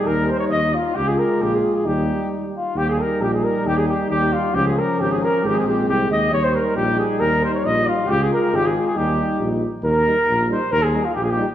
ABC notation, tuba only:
X:1
M:2/4
L:1/8
Q:1/4=135
K:Ebmix
V:1 name="Tuba" clef=bass
E,,2 E,,2 | D,,2 B,,,2 | E,,2 z2 | E,,2 B,,,2 |
E,,2 E,,2 | D,,2 A,,,2 | A,,, B,,, C,, E,, | E,,2 B,,,2 |
E,,2 B,,,2 | D,,2 A,,,2 | E,,2 B,,,2 | E,,2 B,,,2 |
E,,2 B,,,2 |]